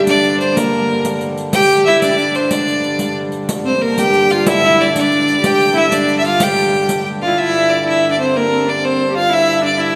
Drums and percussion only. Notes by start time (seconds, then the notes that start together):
0.07 riq
0.24 riq
0.41 riq
0.57 riq
1.05 riq
1.21 riq
1.37 riq
1.53 riq
2.02 riq
2.18 riq
2.35 riq
2.51 riq
2.68 riq
2.84 riq
2.99 riq
3.32 riq
3.49 riq
3.98 riq
4.13 riq
4.30 riq
4.46 riq
4.96 riq
5.12 riq
5.28 riq
5.44 riq
5.92 riq
6.09 riq
6.24 riq
6.40 riq
6.89 riq